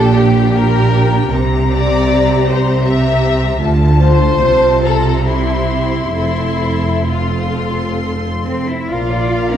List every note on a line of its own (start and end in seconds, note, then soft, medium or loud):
0.00 1.29 A#1 medium
0.00 1.28 A#2 medium
0.00 0.53 D4 medium
0.00 0.55 G4 medium
0.00 0.13 A4 medium
0.00 0.53 G5 soft
0.15 0.55 G4 medium
0.56 1.31 D4 medium
0.56 1.30 G4 medium
0.56 1.32 A#4 medium
0.56 1.31 G5 soft
1.31 3.59 C2 medium
1.31 3.59 C3 medium
1.31 2.85 C4 medium
1.31 2.82 G4 soft
1.31 2.84 A#5 medium
1.72 2.44 D5 medium
2.49 2.86 C5 medium
2.84 3.62 C4 soft
2.84 3.61 G4 medium
2.84 3.62 E5 medium
2.84 3.61 A#5 soft
3.63 4.39 D2 medium
3.63 4.39 D3 soft
3.63 4.39 A3 soft
3.63 4.39 F4 soft
3.63 4.39 A5 soft
4.02 4.80 C5 medium
4.42 6.16 C2 soft
4.42 6.16 C3 soft
4.42 5.24 C4 soft
4.42 5.24 F4 soft
4.42 4.84 A5 soft
4.85 5.27 A4 medium
4.85 5.27 A#5 soft
5.26 6.14 C4 soft
5.26 6.15 E4 soft
5.26 6.16 G4 soft
5.26 6.16 C6 soft
6.16 8.64 F1 soft
6.16 8.41 F2 soft
6.16 7.08 C4 soft
6.16 7.08 E4 medium
6.16 7.08 A4 soft
6.16 7.08 C6 soft
7.09 8.64 C4 soft
7.09 8.46 F4 soft
7.09 8.64 A4 soft
7.09 8.65 C6 soft
8.46 8.67 C4 soft
8.69 8.90 E4 soft
8.88 9.57 A#1 soft
8.88 9.52 F4 soft
8.88 9.57 A#4 soft
8.88 9.10 A#4 soft
8.88 9.57 D5 soft
9.12 9.32 D5 soft
9.33 9.52 F5 soft
9.52 9.57 A#3 soft
9.52 9.57 A#5 soft